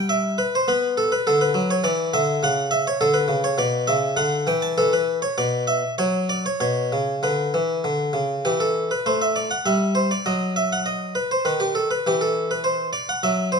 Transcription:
0.00 0.35 G3 medium
0.09 0.38 E5 medium
0.38 0.53 B4 loud
0.55 0.69 C5 medium
0.68 1.10 B3 medium
0.68 0.93 B4 loud
0.98 1.12 A4 loud
1.12 1.26 B4 medium
1.27 1.54 D3 medium
1.27 1.41 A4 loud
1.41 1.70 B4 medium
1.54 1.82 F#3 medium
1.71 1.84 C#5 medium
1.84 2.11 E3 medium
1.84 2.13 D5 loud
2.14 2.41 D3 medium
2.14 2.42 E5 loud
2.43 2.85 C#3 medium
2.43 2.72 F#5 loud
2.71 2.86 E5 loud
2.87 3.01 C#5 loud
3.01 3.29 D3 medium
3.01 3.15 A4 loud
3.14 3.44 B4 medium
3.28 3.57 C#3 medium
3.44 3.59 C#5 medium
3.58 3.86 B2 medium
3.58 3.88 D5 loud
3.87 4.16 C#3 medium
3.87 4.17 E5 loud
4.16 4.45 D3 medium
4.16 4.46 F#5 loud
4.47 4.75 E3 medium
4.47 4.62 G5 loud
4.62 4.77 A5 loud
4.78 5.20 E3 medium
4.78 4.92 A4 loud
4.93 5.18 B4 medium
5.22 5.37 C#5 medium
5.38 5.81 B2 medium
5.38 5.63 D5 medium
5.67 5.93 E5 medium
5.98 6.43 F#3 medium
5.98 6.29 C#5 loud
6.29 6.45 D5 medium
6.46 6.59 C#5 medium
6.60 6.90 B2 medium
6.60 7.14 C#5 medium
6.92 7.22 C#3 medium
7.23 7.52 D3 medium
7.23 8.02 B4 medium
7.54 7.83 E3 medium
7.84 8.14 D3 medium
8.13 8.43 C#3 medium
8.45 8.89 E3 medium
8.45 8.60 G4 medium
8.60 8.91 A4 medium
8.91 9.06 B4 medium
9.06 9.49 A3 medium
9.06 9.21 C5 medium
9.22 9.36 E5 medium
9.36 9.51 D5 medium
9.51 9.66 F#5 medium
9.66 10.09 G3 medium
9.66 9.96 E5 medium
9.95 10.11 C5 medium
10.11 10.26 D5 medium
10.26 11.12 F#3 medium
10.26 10.52 D#5 medium
10.56 10.71 E5 medium
10.72 10.87 F#5 medium
10.86 11.15 D#5 medium
11.15 11.30 B4 medium
11.31 11.46 C5 medium
11.45 11.88 D#3 medium
11.45 11.60 B4 medium
11.60 11.75 G4 medium
11.75 11.90 A4 medium
11.91 12.05 B4 medium
12.07 12.90 E3 medium
12.07 12.21 G4 medium
12.21 12.50 A4 medium
12.51 12.64 B4 medium
12.64 12.89 C5 medium
12.93 13.07 D5 medium
13.09 13.23 F#5 medium
13.23 13.60 F#3 medium
13.23 13.48 E5 medium
13.52 13.60 C5 medium

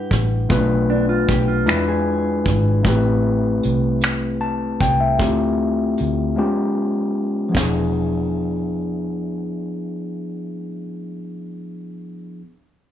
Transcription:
0.00 0.44 G3 medium
0.00 0.45 D4 medium
0.00 0.46 E4 medium
0.00 0.46 G4 medium
0.00 0.50 B4 medium
0.00 0.46 F#5 medium
0.11 0.46 A1 medium
0.11 kick medium
0.11 closed hi-hat medium
0.49 1.25 B1 medium
0.49 1.67 A3 medium
0.49 1.67 B3 medium
0.49 0.56 C4 soft
0.49 1.67 F4 medium
0.49 1.68 B4 medium
0.49 kick medium
0.49 closed hi-hat medium
0.57 1.65 D4 medium
0.90 1.08 D4 medium
1.09 1.27 F4 medium
1.28 1.69 B1 medium
1.28 1.47 G4 medium
1.28 kick medium
1.28 closed hi-hat medium
1.48 1.66 F4 medium
1.66 2.48 E2 medium
1.66 2.84 G#3 medium
1.66 2.84 D4 medium
1.66 2.84 E4 medium
1.66 1.86 E4 medium
1.66 2.85 F4 medium
1.66 2.85 B4 medium
1.66 finger snap loud
1.66 closed hi-hat medium
1.88 2.81 G#4 medium
2.46 2.81 G#1 medium
2.46 kick medium
2.46 closed hi-hat medium
2.83 3.60 A1 medium
2.83 5.15 A3 medium
2.83 5.16 C4 medium
2.83 5.17 E4 medium
2.83 5.17 G4 medium
2.83 kick medium
2.83 closed hi-hat medium
2.89 5.18 B4 medium
3.63 4.78 C2 medium
3.63 closed hi-hat medium
4.01 finger snap medium
4.01 closed hi-hat medium
4.41 4.78 A5 medium
4.80 5.20 C2 medium
4.80 5.00 G5 medium
4.80 kick medium
4.80 closed hi-hat medium
5.00 5.38 E5 soft
5.19 5.95 D2 medium
5.19 6.37 A3 medium
5.19 6.37 C4 soft
5.19 6.37 E4 soft
5.19 6.37 F4 medium
5.19 6.38 G4 medium
5.19 kick medium
5.19 closed hi-hat medium
5.98 6.35 D2 medium
5.98 closed hi-hat medium
6.36 7.54 G#3 medium
6.36 7.51 B3 soft
6.36 7.55 C#4 medium
6.36 7.55 F4 soft
6.36 7.56 G4 medium
7.49 10.49 F3 medium
7.49 10.52 B3 soft
7.55 10.56 E1 medium
7.55 10.55 D4 medium
7.55 10.57 E4 medium
7.55 kick medium
7.55 snare medium
7.55 open hi-hat medium
7.60 10.60 G#4 medium

